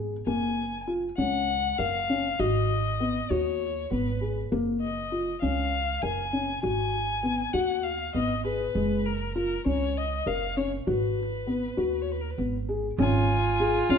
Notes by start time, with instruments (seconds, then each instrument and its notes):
Already playing: upright bass G#1, felt piano G#4
0.27 upright bass F#1, felt piano A#3, violin G#5
0.87 felt piano F4
1.17 upright bass C#2, felt piano C#4, violin F#5
1.78 upright bass F#1, felt piano A#4, violin F5
2.09 felt piano C#4
2.39 upright bass G#1, felt piano F#4, violin D#5
3.00 felt piano B3
3.30 upright bass D#2, felt piano F#4, violin C#5
3.91 upright bass G#1, felt piano B3, violin B4
4.21 felt piano G#4
4.52 upright bass F#1, felt piano A#3
4.82 violin D#5
5.12 felt piano F4
5.41 upright bass C#2, felt piano C#4, violin F5
6.02 upright bass F#1, felt piano A#4, violin G#5
6.33 felt piano C#4
6.63 upright bass G#1, felt piano F#4, violin G#5
7.23 felt piano B3
7.54 upright bass D#2, felt piano F#4, violin F#5
7.83 violin F5
8.15 upright bass G#1, felt piano B3, violin D#5
8.45 felt piano G#4, violin B4
8.75 upright bass F#1, felt piano G#3
9.06 violin A#4
9.35 felt piano F4, violin A#4
9.65 upright bass C#2, felt piano C#4, violin C#5
9.97 violin D#5
10.26 upright bass F#1, felt piano A#4, violin F5
10.57 felt piano C#4, violin C#5
10.87 upright bass G#1, felt piano F#4, violin B4
11.47 felt piano B3
11.77 upright bass D#2, felt piano F#4
12.02 violin C#5
12.12 violin B4
12.21 violin A#4
12.30 violin B4
12.38 upright bass G#1, felt piano B3
12.69 felt piano G#4
12.98 upright bass G#1, felt piano C#4, viola F4, violin G#5, frame drum
13.60 felt piano G#4, frame drum
13.90 upright bass F2, felt piano C#4, violin F5, frame drum